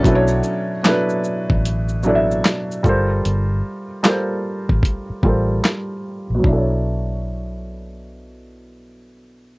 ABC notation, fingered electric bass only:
X:1
M:4/4
L:1/16
Q:"Swing 16ths" 1/4=75
K:Glyd
V:1 name="Fingered electric bass" clef=bass
B,,,2 z4 z A,,,4- A,,, z2 G,,,2 | G,,,2 z4 z A,,, z2 A,,,2 z3 _B,,, | B,,,16 |]